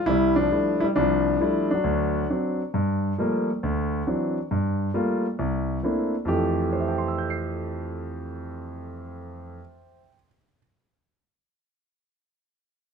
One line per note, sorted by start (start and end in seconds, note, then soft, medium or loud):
0.06 0.46 C2 medium
0.06 0.36 G3 medium
0.06 0.34 E4 medium
0.36 0.50 F3 medium
0.36 0.82 D4 medium
0.51 0.82 F3 soft
0.51 0.83 G3 soft
0.51 0.83 A3 soft
0.51 0.79 E4 soft
0.80 0.89 G3 medium
0.80 0.85 E4 medium
0.96 1.34 C2 medium
0.96 1.69 D4 medium
1.00 1.39 F3 medium
1.40 1.71 F3 medium
1.40 1.71 G3 soft
1.40 1.71 A3 soft
1.40 1.72 E4 medium
1.71 2.27 F#3 medium
1.71 2.25 D4 medium
1.84 2.23 D2 medium
2.30 2.60 F#3 soft
2.30 2.61 C4 soft
2.30 2.60 D4 medium
2.74 3.12 G2 medium
3.18 3.48 F3 medium
3.18 3.49 G3 soft
3.18 3.49 A3 soft
3.18 3.49 A#3 medium
3.63 4.01 D2 medium
4.07 4.37 E3 soft
4.07 4.37 F#3 soft
4.07 4.37 C4 soft
4.07 4.37 D4 soft
4.51 4.89 G2 medium
4.94 5.25 G3 medium
4.94 5.25 A3 soft
4.94 5.25 A#3 soft
4.94 5.25 F4 medium
5.39 5.77 C2 medium
5.83 6.13 A3 soft
5.83 6.14 A#3 soft
5.83 6.14 C4 soft
5.83 6.14 D4 soft
5.83 6.14 E4 soft
6.25 9.56 F2 medium
6.25 9.58 E3 medium
6.25 9.59 A3 medium
6.25 9.59 G4 medium
6.73 10.00 C5 soft
6.80 10.07 E5 soft
6.88 10.16 G5 soft
6.98 10.25 C6 soft
7.08 10.35 E6 soft
7.18 10.46 G6 soft
7.30 10.57 C7 soft